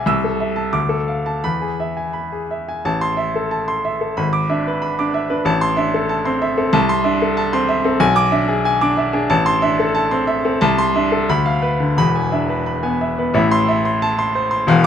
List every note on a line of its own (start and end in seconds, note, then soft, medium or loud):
0.00 0.10 B1 medium
0.00 0.10 G#4 medium
0.00 0.10 E5 medium
0.00 0.10 G#5 medium
0.00 0.10 D6 loud
0.06 0.72 C2 medium
0.06 0.34 E6 loud
0.24 0.51 A4 medium
0.40 0.67 E5 medium
0.56 0.74 A5 medium
0.73 1.42 D2 medium
0.73 1.01 D6 medium
0.89 1.18 A4 medium
1.08 1.37 F5 medium
1.26 1.44 A5 medium
1.44 2.81 E2 medium
1.44 1.73 B5 medium
1.62 1.90 G#4 medium
1.80 2.08 E5 medium
1.97 2.25 G#5 medium
2.13 2.42 B5 medium
2.32 2.61 G#4 medium
2.51 2.79 E5 medium
2.69 2.85 G#5 medium
2.85 4.14 A1 medium
2.85 3.12 A5 medium
3.01 3.29 C6 medium
3.17 3.45 E5 medium
3.36 3.62 A4 medium
3.51 3.78 A5 medium
3.68 3.95 C6 medium
3.85 4.11 E5 medium
4.01 4.18 A4 medium
4.17 5.42 G#1 medium
4.17 4.44 B5 medium
4.33 4.60 D6 medium
4.49 4.66 D4 medium
4.49 4.76 E5 medium
4.67 4.93 B4 medium
4.82 5.08 B5 medium
4.99 5.25 D4 medium
4.99 5.24 D6 medium
5.14 5.40 E5 medium
5.30 5.46 D4 medium
5.30 5.46 B4 medium
5.45 6.70 A1 loud
5.45 5.72 A5 medium
5.61 5.87 C6 loud
5.77 5.94 D4 medium
5.77 6.03 E5 medium
5.94 6.20 A4 medium
6.09 6.35 A5 medium
6.25 6.51 C4 medium
6.25 6.52 C6 medium
6.42 6.68 E5 medium
6.57 6.74 C4 medium
6.57 6.74 A4 medium
6.73 7.98 C2 loud
6.73 7.00 A5 loud
6.89 7.16 C6 loud
7.04 7.22 D4 medium
7.04 7.31 E5 medium
7.22 7.48 A4 medium
7.37 7.64 A5 medium
7.53 7.79 C4 medium
7.53 7.79 C6 medium
7.69 7.95 E5 medium
7.84 8.02 C4 medium
7.84 8.02 A4 medium
8.00 9.26 B1 loud
8.00 8.27 G#5 loud
8.16 8.43 D6 loud
8.32 8.49 D4 medium
8.32 8.59 E5 medium
8.48 8.76 G#4 medium
8.65 8.92 G#5 medium
8.81 9.08 D4 medium
8.81 9.08 D6 medium
8.97 9.24 E5 medium
9.13 9.30 D4 medium
9.13 9.30 G#4 medium
9.30 10.56 A1 loud
9.30 9.56 A5 loud
9.46 9.72 C6 loud
9.62 9.79 D4 medium
9.62 9.88 E5 medium
9.79 10.05 A4 medium
9.95 10.21 A5 medium
10.11 10.37 C4 medium
10.11 10.37 C6 medium
10.27 10.54 E5 medium
10.45 10.61 C4 medium
10.45 10.61 A4 medium
10.61 11.26 C2 loud
10.61 10.87 A5 loud
10.78 11.04 C6 loud
10.96 11.11 D4 medium
10.96 11.22 E5 medium
11.12 11.28 A4 medium
11.29 11.95 D2 medium
11.29 11.56 B5 loud
11.46 11.73 F5 medium
11.62 11.90 B4 medium
11.80 11.97 D3 medium
11.97 13.32 E1 medium
11.97 13.32 E2 medium
11.97 12.25 B5 loud
12.15 12.43 G#5 medium
12.32 12.49 D4 medium
12.32 12.60 E5 medium
12.49 12.77 B4 medium
12.66 12.94 B5 medium
12.83 13.11 B3 medium
12.83 13.11 G#5 medium
13.01 13.29 E5 medium
13.18 13.35 B3 medium
13.18 13.36 B4 medium
13.34 14.64 A1 loud
13.34 14.64 A2 loud
13.34 13.62 E5 medium
13.51 13.79 C6 loud
13.69 13.96 E5 medium
13.85 14.12 C6 medium
14.02 14.29 A5 medium
14.19 14.45 C6 medium
14.35 14.62 C5 medium
14.51 14.68 C6 medium
14.67 14.87 E1 loud
14.67 14.87 E2 loud
14.67 14.87 F5 loud